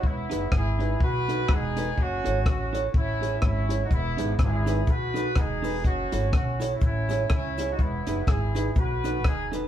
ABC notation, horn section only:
X:1
M:4/4
L:1/16
Q:"Swing" 1/4=124
K:E
V:1 name="Horn section"
[B,E]4 [EG]4 [FB]4 [DG]4 | [CF]4 [CF]3 z [CE]4 [CE]3 [DF] | [B,E]4 [EG]4 [FB]4 [DG]4 | [CF]4 [CF]3 [CE] [CE]4 [CE]3 [DF] |
[B,E]4 [EG]4 [FB]4 [DG]2 z2 |]